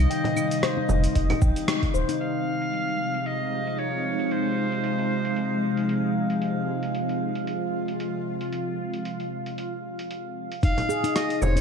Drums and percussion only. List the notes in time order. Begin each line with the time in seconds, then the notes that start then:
0.11 open hi-hat, cabasa
0.24 open hi-hat, frame drum
0.37 cabasa, claves
0.51 open hi-hat, cabasa
0.63 cross-stick, open hi-hat, cabasa
0.89 frame drum, cabasa
1.04 open hi-hat, cabasa
1.15 kick, open hi-hat, cabasa
1.30 open hi-hat, frame drum, claves
1.42 kick, cabasa
1.56 open hi-hat, cabasa
1.68 cross-stick, open hi-hat, cabasa
1.83 kick, open hi-hat
1.95 cabasa
2.09 open hi-hat, cabasa
2.21 open hi-hat
2.61 open hi-hat
2.73 open hi-hat
2.88 open hi-hat
3.14 open hi-hat
3.26 open hi-hat
3.67 open hi-hat
3.78 open hi-hat
4.19 open hi-hat
4.31 open hi-hat
4.72 open hi-hat
4.84 open hi-hat
4.98 open hi-hat
5.25 open hi-hat
5.36 open hi-hat
5.77 open hi-hat
5.89 open hi-hat
6.30 open hi-hat
6.42 open hi-hat
6.83 open hi-hat
6.95 open hi-hat
7.09 open hi-hat
7.35 open hi-hat
7.47 open hi-hat
7.88 open hi-hat
8.00 open hi-hat
8.41 open hi-hat
8.53 open hi-hat
8.94 open hi-hat
9.05 open hi-hat
9.20 open hi-hat
9.46 open hi-hat
9.58 open hi-hat
9.99 open hi-hat
10.11 open hi-hat
10.52 open hi-hat
10.63 kick, open hi-hat, cabasa
10.78 open hi-hat, frame drum
10.90 cabasa
11.04 open hi-hat, cabasa
11.16 cross-stick, open hi-hat, cabasa
11.30 open hi-hat
11.42 frame drum, cabasa
11.57 open hi-hat, cabasa